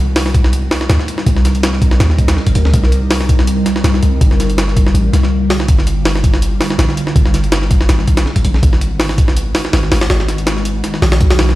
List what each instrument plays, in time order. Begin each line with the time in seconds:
Already playing: 808-style bass C2
0.16 snare, open hi-hat
0.26 snare
0.34 kick, closed hi-hat
0.44 snare
0.53 closed hi-hat
0.71 snare, open hi-hat
0.81 snare
0.90 808-style bass D2, snare, closed hi-hat
0.99 snare
1.08 closed hi-hat
1.18 snare
1.26 808-style bass C2, kick, closed hi-hat
1.37 snare
1.45 snare, closed hi-hat
1.55 closed hi-hat
1.63 snare, closed hi-hat
1.73 snare
1.82 kick, closed hi-hat
1.91 snare
2.00 808-style bass D#2, snare, closed hi-hat
2.10 snare
2.18 kick, closed hi-hat
2.28 snare, closed hi-hat
2.37 snare
2.47 kick, closed hi-hat
2.55 808-style bass D2, closed hi-hat
2.65 snare
2.74 808-style bass C2, kick, closed hi-hat
2.84 snare
2.92 closed hi-hat
3.11 snare, open hi-hat
3.21 snare
3.29 kick, closed hi-hat
3.39 snare
3.47 closed hi-hat
3.66 snare, closed hi-hat
3.76 snare
3.84 808-style bass C2, snare, closed hi-hat
3.94 snare
4.03 808-style bass C2, closed hi-hat
4.21 808-style bass G1, kick, closed hi-hat
4.31 snare
4.40 snare, closed hi-hat
4.50 closed hi-hat
4.58 snare, closed hi-hat
4.68 snare
4.76 kick, closed hi-hat
4.87 snare
4.94 808-style bass A1, closed hi-hat
5.13 808-style bass C2, snare, closed hi-hat
5.23 snare
5.50 snare, open hi-hat
5.60 snare
5.68 808-style bass G1, kick, closed hi-hat
5.79 snare
5.87 closed hi-hat
6.05 snare, open hi-hat
6.16 snare
6.24 kick, closed hi-hat
6.34 snare
6.42 closed hi-hat
6.61 snare, open hi-hat
6.70 snare
6.79 808-style bass A1, snare, closed hi-hat
6.89 snare
6.97 closed hi-hat
7.07 snare
7.16 808-style bass G1, kick, closed hi-hat
7.26 snare
7.34 snare, closed hi-hat
7.44 closed hi-hat
7.52 snare, closed hi-hat
7.62 snare
7.71 kick, closed hi-hat
7.81 snare
7.89 808-style bass G#1, snare, closed hi-hat
7.99 snare
8.08 kick, closed hi-hat
8.17 snare, closed hi-hat
8.26 snare
8.36 kick, closed hi-hat
8.45 808-style bass A#1, closed hi-hat
8.54 snare
8.63 808-style bass G#1, kick, closed hi-hat
8.73 snare
8.81 closed hi-hat
9.00 snare, open hi-hat
9.09 snare
9.18 kick, closed hi-hat
9.28 snare
9.37 closed hi-hat
9.55 snare, open hi-hat
9.65 snare
9.73 808-style bass G#1, snare, open hi-hat
9.83 snare
9.92 808-style bass G#1, snare, open hi-hat
10.01 snare, open hi-hat
10.10 808-style bass G#1, snare, open hi-hat
10.20 snare
10.28 snare, closed hi-hat
10.38 closed hi-hat
10.47 snare, closed hi-hat
10.57 snare
10.65 closed hi-hat
10.84 snare, closed hi-hat
10.94 snare
11.02 808-style bass A#1, snare, open hi-hat
11.12 snare, open hi-hat
11.21 808-style bass B1, kick, closed hi-hat
11.31 snare, open hi-hat
11.39 snare, open hi-hat
11.49 snare